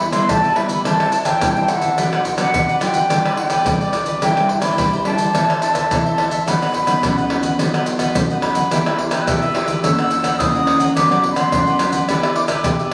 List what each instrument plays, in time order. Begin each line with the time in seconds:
Already playing: nylon-string guitar E3 G3 B3 E4, flute B5
0.00 muted cavaquinho stroke
0.12 nylon-string guitar G3 B3 E4, cavaquinho G4 B4 E5, flute C6, pandeiro, tamborim, maracas
0.28 nylon-string guitar B2, cavaquinho E4 G4 B4 E5, flute A5, pandeiro, tamborim, maracas, surdo
0.43 cavaquinho G4 B4 E5, pandeiro, maracas
0.55 nylon-string guitar G3 B3 E4, cavaquinho E4 G4 B4 E5, flute B5, pandeiro, tamborim
0.69 cavaquinho G4 B4 E5, pandeiro, maracas, surdo
0.85 nylon-string guitar A2 G3 C4 E4, cavaquinho G4 C5 E5 A5, flute A5, pandeiro, tamborim, maracas, surdo
1.00 cavaquinho C5 E5 A5, pandeiro, tamborim, maracas
1.12 muted cavaquinho stroke, pandeiro, maracas
1.25 cavaquinho C5 E5 A5, flute G5, pandeiro, tamborim, maracas, surdo
1.41 nylon-string guitar E3 G3 C4 E4, pandeiro, tamborim, maracas, surdo
1.56 cavaquinho C5 E5 A5, pandeiro, maracas
1.68 flute F#5, pandeiro, tamborim, maracas
1.81 cavaquinho C5 E5 A5, pandeiro, maracas, surdo
1.97 nylon-string guitar B2 F#3 D4 F#4, cavaquinho D4 B4 D5 F#5, pandeiro, tamborim, maracas, surdo
2.12 cavaquinho B4 D5 F#5, pandeiro, tamborim, maracas
2.24 muted cavaquinho stroke, pandeiro, maracas, surdo
2.37 nylon-string guitar F#3 D4 F#4, cavaquinho B4 D5 F#5, flute F#5, pandeiro, tamborim, maracas
2.53 nylon-string guitar F#3, cavaquinho D4 B4 D5 F#5, pandeiro, tamborim, maracas, surdo
2.68 cavaquinho B4 D5 F#5, pandeiro, maracas
2.80 nylon-string guitar F#3 D4 F#4, cavaquinho D4 B4 D5 F#5, flute G5, pandeiro, tamborim, maracas
2.93 cavaquinho B4 D5 F#5, pandeiro, maracas, surdo
3.09 nylon-string guitar B2 G3 D4 F4, cavaquinho F4 G4 B4 D5, pandeiro, tamborim, maracas, surdo
3.24 cavaquinho G4 B4 D5, pandeiro, tamborim, maracas
3.37 flute G5, muted cavaquinho stroke, pandeiro
3.49 cavaquinho G4 B4 D5, pandeiro, tamborim, maracas, surdo
3.66 nylon-string guitar B2 G3 D4 F4, pandeiro, tamborim, maracas, surdo
3.80 cavaquinho G4 B4 D5, pandeiro, maracas
3.93 pandeiro, tamborim, maracas
4.05 cavaquinho G4 B4 D5, pandeiro, maracas, surdo
4.22 nylon-string guitar C3 G3 D4 E4, cavaquinho E4 G4 C5 D5, flute G5, pandeiro, tamborim, maracas, surdo
4.37 nylon-string guitar G3 D4 E4, cavaquinho G4 C5 D5, pandeiro, tamborim, maracas
4.49 muted cavaquinho stroke, pandeiro, surdo
4.62 nylon-string guitar G3 D4 E4, cavaquinho G4 C5 D5, flute B5, pandeiro, tamborim, maracas
4.78 nylon-string guitar G3, cavaquinho E4 G4 C5 D5, pandeiro, tamborim, maracas, surdo
4.92 cavaquinho G4 C5 D5, pandeiro, maracas
5.04 nylon-string guitar G3 D4 E4, cavaquinho E4 G4 C5 D5, flute A5, pandeiro, tamborim
5.17 cavaquinho G4 C5 D5, pandeiro, maracas, surdo
5.34 nylon-string guitar A2 E3 C4 E4, cavaquinho E4 A4 C5 E5, pandeiro, tamborim, maracas, surdo
5.48 cavaquinho A4 C5 E5, pandeiro, tamborim, maracas
5.61 flute A5, muted cavaquinho stroke, pandeiro, maracas
5.74 cavaquinho A4 C5 E5, pandeiro, tamborim, maracas, surdo
5.90 nylon-string guitar E3 C4 E4, pandeiro, tamborim, maracas, surdo
6.05 cavaquinho A4 C5 E5, pandeiro, maracas
6.18 pandeiro, tamborim
6.30 cavaquinho A4 C5 E5, pandeiro, maracas, surdo
6.46 nylon-string guitar B2 F#3 B3 D#4, cavaquinho F#4 B4 D#5 F#5, flute B5, pandeiro, tamborim, maracas, surdo
6.61 cavaquinho B4 D#5 F#5, pandeiro, tamborim, maracas
6.74 muted cavaquinho stroke, pandeiro, surdo
6.86 nylon-string guitar F#3 B3 D#4, cavaquinho B4 D#5 F#5, pandeiro, tamborim, maracas
7.02 nylon-string guitar F#2, cavaquinho F#4 B4 D#5 F#5, pandeiro, tamborim, maracas, surdo
7.17 cavaquinho B4 D#5 F#5, pandeiro, maracas
7.30 nylon-string guitar F#3 B3 D#4, cavaquinho F#4 B4 D#5 F#5, pandeiro, tamborim
7.43 cavaquinho B4 D#5 F#5, pandeiro, maracas, surdo
7.59 nylon-string guitar B2 F#3 B3 D#4, cavaquinho F#4 B4 D#5 F#5, pandeiro, tamborim, maracas, surdo
7.73 cavaquinho B4 D#5 F#5, pandeiro, tamborim, maracas
7.86 muted cavaquinho stroke, pandeiro, maracas
7.99 cavaquinho B4 D#5 F#5, pandeiro, tamborim, maracas, surdo
8.15 nylon-string guitar F#2 F#3 B3 D#4, pandeiro, tamborim, maracas, surdo
8.30 cavaquinho B4 D#5 F#5, pandeiro, maracas
8.42 flute B5, pandeiro, tamborim
8.55 cavaquinho B4 D#5 F#5, pandeiro, maracas, surdo
8.71 nylon-string guitar E3 B3 E4 G4, cavaquinho E4 G4 B4 E5, pandeiro, tamborim, maracas, surdo
8.86 nylon-string guitar B3 E4 G4, cavaquinho G4 B4 E5, pandeiro, tamborim, maracas
8.98 muted cavaquinho stroke, pandeiro, surdo
9.11 nylon-string guitar B3 E4 G4, cavaquinho G4 B4 E5, pandeiro, tamborim, maracas
9.21 flute F#6
9.27 nylon-string guitar B2, cavaquinho E4 G4 B4 E5, flute E6, pandeiro, tamborim, maracas, surdo
9.42 cavaquinho G4 B4 E5, pandeiro, maracas
9.54 nylon-string guitar B3 E4 G4, cavaquinho E4 G4 B4 E5, pandeiro, tamborim
9.67 cavaquinho G4 B4 E5, pandeiro, maracas, surdo
9.83 nylon-string guitar F#2 E3 A#3 C#4, cavaquinho E4 A#4 C#5 F#5, flute E6, pandeiro, tamborim, maracas, surdo
9.99 cavaquinho A#4 C#5 F#5, pandeiro, tamborim, maracas
10.11 muted cavaquinho stroke, pandeiro, maracas
10.23 cavaquinho A#4 C#5 F#5, pandeiro, tamborim, maracas, surdo
10.39 nylon-string guitar C#3 E3 A#3 C#4, flute D#6, pandeiro, tamborim, maracas, surdo
10.54 cavaquinho A#4 C#5 F#5, pandeiro, maracas
10.67 pandeiro, tamborim, surdo
10.79 cavaquinho A#4 C#5 F#5, pandeiro, maracas, surdo
10.95 nylon-string guitar F#2 F#3 B3 D4, cavaquinho D4 B4 D5 F#5, flute D6, pandeiro, tamborim, maracas, surdo
11.10 nylon-string guitar F#3 B3 D4, cavaquinho B4 D5 F#5, pandeiro, tamborim, maracas
11.23 muted cavaquinho stroke, pandeiro, surdo
11.32 nylon-string guitar F#3 B3 D4, cavaquinho F#5, flute C6
11.36 cavaquinho B4 D5, pandeiro, tamborim, maracas
11.52 nylon-string guitar F#2, cavaquinho D4 B4 D5 F#5, pandeiro, tamborim, maracas, surdo
11.67 cavaquinho B4 D5 F#5, pandeiro, maracas
11.79 nylon-string guitar F#3 B3 D4, cavaquinho D4 B4 D5 F#5, pandeiro, tamborim, maracas
11.92 cavaquinho B4 D5 F#5, pandeiro, maracas, surdo
12.07 nylon-string guitar E3 B3 D4 G4, cavaquinho D4 G4 B4 E5, flute B5, pandeiro, tamborim, maracas, surdo
12.23 cavaquinho G4 B4 E5, pandeiro, tamborim, maracas
12.34 flute D6, muted cavaquinho stroke, pandeiro
12.48 cavaquinho G4 B4 E5, pandeiro, tamborim, maracas, surdo
12.64 nylon-string guitar B2 B3 D4 G4, pandeiro, tamborim, maracas, surdo
12.79 cavaquinho G4 B4 E5, pandeiro, maracas